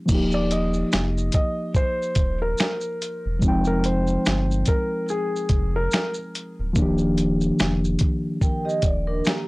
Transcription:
0.06 sub bass D#1, reed electric piano F3 A#3, kick, crash, shaker
0.12 reed electric piano D#4 G4
0.31 felt piano D5, shaker
0.51 felt piano D#5, closed hi-hat, shaker
0.74 shaker
0.92 sub bass F1, finger snap, snare, shaker
1.18 shaker
1.32 felt piano D#5, kick, closed hi-hat, shaker
1.75 felt piano C5, kick, shaker
2.02 shaker
2.15 sub bass D#1, kick, closed hi-hat, shaker
2.42 felt piano A#4
2.58 finger snap, snare, shaker
2.81 shaker
3.02 closed hi-hat, shaker
3.26 sub bass E1
3.39 sub bass F1, reed electric piano F3 G#3, kick, shaker
3.44 reed electric piano C4 D#4
3.48 reed electric piano G5
3.65 felt piano A#4, shaker
3.84 felt piano C5, closed hi-hat, shaker
4.07 shaker
4.26 sub bass G1, finger snap, snare, shaker
4.51 shaker
4.66 felt piano A#4, kick, closed hi-hat, shaker
5.09 felt piano G#4, shaker
5.36 shaker
5.49 sub bass F1, kick, closed hi-hat, shaker
5.76 felt piano A#4
5.91 finger snap, snare, shaker
6.14 shaker
6.35 closed hi-hat, shaker
6.60 sub bass D1
6.73 sub bass D#1, reed electric piano F3 A#3, kick, shaker
6.78 reed electric piano D#3 D4
6.82 reed electric piano G4
6.98 shaker
7.18 closed hi-hat, shaker
7.41 shaker
7.59 sub bass F1, finger snap, snare, shaker
7.85 shaker
7.99 kick, closed hi-hat, shaker
8.41 vibraphone A#4 G5, kick, shaker
8.65 vibraphone G4 D#5
8.69 shaker
8.82 sub bass D#1, vibraphone D5, kick, closed hi-hat, shaker
9.07 vibraphone D4 A#4
9.25 vibraphone A#3 G4, finger snap, snare, shaker

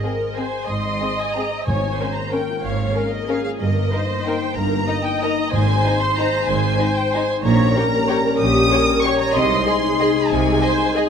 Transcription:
Already playing: harp G#2 G#3, violin section D#5
0.03 french horn section G#3 C4, violin section C4 G#4, viola section A#4, harp C5
0.20 harp G#4
0.37 french horn section G#3 C4, violin section C4 G#4 G#5, harp C5, viola section C5
0.53 harp G#4
0.68 double bass section G#1, cello section G#2, harp G#2, viola section D#5, violin section C6
0.85 harp G#3
1.02 french horn section G#3 C4, violin section C4 G#4, harp C5
1.19 harp G#4, violin section G#5
1.34 french horn section G#3 C4, violin section C4 G#4 A#5, harp C5
1.53 harp G#4
1.65 double bass section G#1, timpani G#2, harp G#2, cello section G#2, viola section C#5, violin section G#5
1.83 harp A#3
1.99 french horn section A#3 C#4, violin section C#4 A#4, viola section C5, harp C#5
2.14 harp A#4, violin section A#5
2.31 french horn section A#3 C#4, violin section C#4 A#4 G5, viola section A#4, harp C#5
2.50 harp F4
2.63 double bass section G#1, harp G#2, cello section G#2, viola section C#5, violin section F5
2.80 harp A#3
2.95 french horn section A#3 C#4, violin section C#4 A#4, viola section A#4, harp C#5
3.11 harp A#4, violin section D#5
3.28 french horn section A#3 C#4, violin section C#4 A#4 F5, viola section G#4, harp C#5
3.44 harp F4, violin section F5
3.60 double bass section G1, cello section G2, harp G2, viola section A#4, violin section D#5
3.77 harp A#3
3.92 french horn section A#3 D#4, violin section D#4 A#4, harp A#4, viola section C5
4.10 harp D#4
4.25 french horn section A#3 D#4, violin section D#4 A#4 G5, harp A#4
4.43 harp D#4
4.55 double bass section G1, cello section G2, harp G2, viola section A#4, violin section A#5
4.73 harp A#3
4.88 french horn section A#3 D#4, violin section D#4 A#4, harp A#4, viola section D#5
5.04 harp D#4, violin section G5
5.21 french horn section A#3 D#4, violin section D#4 A#4 A#5, harp A#4
5.39 harp D#4
5.52 double bass section G#1, timpani G#2, cello section G#2, harp G#2, viola section C5, violin section G#5
5.69 harp C4
5.85 french horn section C4 D#4, violin section D#4 C5, harp G#4
6.01 harp C5, violin section C6
6.17 french horn section C4 D#4, violin section D#4 C5 A#5, harp G#4
6.33 harp D#4
6.47 double bass section G#1, cello section G#2, harp G#2, violin section G#5
6.65 harp C4
6.78 french horn section C4 D#4, violin section D#4 C5, harp G#4, viola section C5
6.97 harp C5, violin section G5
7.12 french horn section C4 D#4, violin section D#4 C5 G#5, harp G#4
7.30 harp D#4
7.44 double bass section A#1, cello section A#2, harp A#2, french horn section G3 C#4, viola section C#5, violin section A#5
7.60 harp A#3
7.75 harp G4, violin section G4 C#5, viola section A#4
7.93 harp A#4
8.09 violin section G4 C#5, harp G4
8.25 harp C#4
8.40 double bass section A#1, cello section A#2, harp A#2, viola section G4, violin section D#6
8.55 harp A#3
8.72 harp G4, violin section G4 C#5, viola section A#4
8.89 harp A#4
9.04 harp G4, violin section G4 C#5 C#6, viola section C#5
9.19 harp C#4, violin section A#5
9.34 double bass section C2, cello section C3, harp C3, french horn section G#3 D#4, viola section D#5, violin section C6
9.51 harp G#3
9.66 viola section G#4, violin section G#4 D#5, harp G#4
9.84 harp D#4
10.00 violin section G#4 D#5, harp G#4
10.16 harp D#4
10.30 double bass section C2, cello section C3, harp C3, violin section G#5
10.47 harp G#3
10.62 violin section G#4 D#5, harp G#4, viola section C5
10.80 harp D#4
10.95 violin section G#4 D#5, viola section G#4, harp G#4

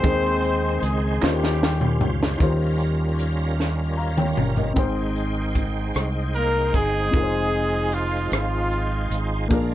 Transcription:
Already playing: horn section C4 D#4 G#4 C5
0.03 fingered electric bass D#2, upright piano D#3 G#3 C4 D#4 G#4 C5, tonewheel organ G#3 C4 D#4 C5, kick, closed hi-hat
0.44 closed hi-hat
0.82 fingered electric bass C#2, horn section G#3 G#4, closed hi-hat
1.21 fingered electric bass D#2, upright piano D#3 C#4 D#4 F4 G4 C5, horn section G3 A#3 C#4 G4, tonewheel organ G3 C#4 F4 C5, snare, clap
1.44 snare
1.63 snare
1.81 mid tom
2.01 fingered electric bass C#2, floor tom
2.23 snare
2.37 fingered electric bass D#2, upright piano D#3 C#4 D#4 F4, tonewheel organ G3 C#4 F4 A#4, kick, closed hi-hat
2.41 upright piano G4 C5
2.80 closed hi-hat
3.19 closed hi-hat
3.60 snare
3.97 upright piano F5 A#5
4.17 upright piano C#5 G5, mid tom
4.37 fingered electric bass G1, mid tom
4.57 upright piano A#4 D#5, floor tom
4.74 fingered electric bass G#1, upright piano G#2 C4 D#4 G5, tonewheel organ D#4 C5, kick, closed hi-hat
4.78 tonewheel organ G#3 G5, upright piano G#4 C5
5.16 closed hi-hat
5.55 kick, closed hi-hat
5.94 fingered electric bass C2, cross-stick, closed hi-hat
6.34 horn section A#3 A#4, trumpet A#4, closed hi-hat
6.74 fingered electric bass G1, horn section G#3 C4 D#4 G#4, trumpet G#4, kick, closed hi-hat
7.11 fingered electric bass F1, upright piano C4 D#4 F4, tonewheel organ D#4, kick, closed hi-hat
7.15 tonewheel organ G#3 F4 C5, upright piano G#4 A#4
7.23 upright piano C5
7.53 closed hi-hat
7.92 horn section F3 F4, trumpet F4, closed hi-hat
8.32 fingered electric bass G#1, horn section F3 G#3 C4 F4, trumpet F4, cross-stick, closed hi-hat
8.71 closed hi-hat
9.10 fingered electric bass G#1, closed hi-hat
9.48 fingered electric bass A#1, upright piano A#2 A#3 D4 F4, tonewheel organ G#3 F4 A#4, kick, closed hi-hat
9.52 tonewheel organ D4, upright piano G#4 A#4

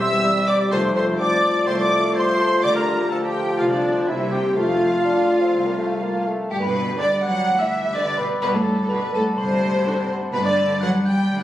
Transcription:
Already playing: double bass section E1, cello section E2, harp E3 G3 C4 G4 G5 C6, french horn section C4 G4
0.00 harp C5, viola section E5, oboe E5, clarinet E5, violin section E6, flute E6
0.13 harp G4
0.24 bassoon G3, harp G5
0.37 harp C6
0.46 viola section D5, oboe D5, clarinet D5, harp G5, violin section D6, flute D6
0.61 harp G4
0.71 double bass section F1, cello section F2, harp F3, bassoon A3, french horn section A3 F4, oboe C5, viola section C5, clarinet C5, violin section C6, flute C6
0.85 harp F4
0.95 harp A4, viola section C5, oboe C5, clarinet C5, violin section C6, flute C6
1.09 harp F5
1.19 bassoon C4, clarinet D5, viola section D5, oboe D5, harp A5, violin section D6, flute D6
1.32 harp F5
1.44 harp A5
1.56 harp F5
1.67 cello section C2, double bass section C2, bassoon A3, harp A3, viola section C5, clarinet C5, oboe C5, violin section C6, flute C6
1.79 harp F4, clarinet D5, oboe D5, viola section D5, violin section D6, flute D6
1.92 harp A4
2.04 harp F5
2.15 viola section C5, oboe C5, clarinet C5, harp A5, violin section C6, flute C6
2.28 harp F5
2.40 harp A5
2.52 harp F5
2.62 double bass section D2, cello section D3, harp D3, bassoon G3, viola section D5, oboe D5, clarinet D5, violin section D6, flute D6
2.75 harp A3, oboe A#4, clarinet A#4, viola section A#4, violin section A#5, flute A#5
2.88 harp A4
3.00 harp F4
3.11 bassoon F3, oboe A4, viola section A4, clarinet A4, harp F5, violin section A5, flute A5
3.23 oboe G4, viola section G4, clarinet G4, violin section G5, flute G5, harp A5
3.35 harp F5
3.47 harp A4
3.58 double bass section C2, harp C3, cello section C3, oboe F4, viola section F4, clarinet F4, violin section F5, flute F5
3.70 harp C4, oboe D4, viola section D4, clarinet D4, violin section D5, flute D5
3.83 harp A4
3.95 harp C5
4.07 double bass section C2, harp C3, cello section C3, french horn section A#3 G4, bassoon C4, oboe E4, viola section E4, clarinet E4, violin section E5, flute E5
4.20 harp C4
4.31 oboe G4, viola section G4, clarinet G4, harp A#4, flute G5, violin section G5
4.44 harp C5
4.55 double bass section F1, cello section F2, harp F3, french horn section A3 F4, bassoon A3, oboe F4, viola section F4, clarinet F4, flute F5, violin section F5
4.68 harp F4
4.81 harp C5
4.93 harp F5
5.05 bassoon D4, harp A5
5.17 harp C6
5.29 harp A5
5.41 bassoon C4, harp F5
5.53 double bass section C2, cello section C2
5.66 bassoon A#3, harp F4
5.78 bassoon A3, harp C5
5.90 harp F5
6.02 bassoon A#3, harp A5
6.15 harp C6
6.27 bassoon A3, harp A5
6.38 harp F5
6.50 double bass section G1, harp G2, cello section G2, violin section G4, glockenspiel G5
6.62 cello section B2, harp B3, violin section B4, glockenspiel B5
6.75 harp D4
6.86 harp G4
6.98 cello section D3, viola section D4 G4, harp B4, violin section B4 D5, glockenspiel D6
7.10 harp D5
7.23 cello section F#3, violin section F#5, harp G5, glockenspiel F#6
7.35 harp D5
7.47 double bass section D2, harp D3
7.58 cello section E3, harp B3, violin section E5, glockenspiel E6
7.71 harp D4
7.84 harp G4
7.93 cello section D3, viola section D4 G4, harp B4, violin section B4 D5, glockenspiel D6
8.08 harp D5
8.17 cello section B2, violin section B4, harp G5, glockenspiel B5
8.32 harp D5
8.42 double bass section G1, harp G2, cello section B2, violin section B4, glockenspiel B5
8.54 cello section A2, harp A3, violin section A4, glockenspiel A5
8.68 harp D4
8.79 harp F#4
8.89 cello section B2, viola section D4 F#4, violin section A4 B4, harp A4, glockenspiel B5
9.04 harp D5
9.14 cello section A2, violin section A4, harp F#5, glockenspiel A5
9.27 harp D5
9.37 double bass section G1, harp G2, cello section C3, violin section C5, glockenspiel C6
9.52 harp A3
9.63 harp D4
9.76 harp F#4
9.86 viola section D4 F#4, violin section A4, harp A4
9.99 harp D5
10.12 harp F#5
10.24 harp D5
10.32 double bass section G1, harp G2, cello section B2, violin section B4, glockenspiel B5
10.45 cello section D3, harp G3, violin section D5, glockenspiel D6
10.59 harp B3
10.71 harp G4
10.81 cello section F#3, viola section B3 G4, harp B3, violin section B4 F#5, glockenspiel F#6
10.95 harp B4
11.05 cello section G3, violin section G5, harp G5, glockenspiel G6
11.19 harp B4
11.30 double bass section D2, harp D3

